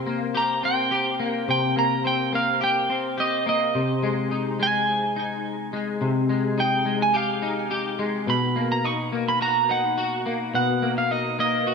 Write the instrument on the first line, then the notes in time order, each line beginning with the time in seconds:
clean electric guitar
Already playing: C3 C4 C6
0.06 A#3
0.34 G4 A#5
0.63 C4 G5
0.91 G4
1.19 A#3
1.27 F5
1.48 C3 G5
1.76 A#3 A#5
2.04 C4 G5
2.33 A#3 F5
2.61 G4 G5
2.89 C4
3.18 G4 D#5
3.46 A#3 D#5
3.75 C3
4.03 G#3
4.31 D#4
4.60 G#3 G#5
5.16 D#4
5.73 G#3
6.01 C3
6.29 G#3
6.58 D#4 G5
6.85 G#3
7.02 G#5
7.14 G4 F5
7.42 D#4
7.71 G4
7.99 G#3
8.27 B2 B5
8.56 A#3
8.72 A#5
8.84 D#4 C#6
9.12 A#3
9.29 B5
9.41 F#4 A#5
9.69 D#4 F#5
9.98 F#4
10.26 A#3
10.54 B2 F#5
10.82 A#3
10.98 F5
11.11 D#4 D#5
11.39 A#3 D#5
11.67 F#4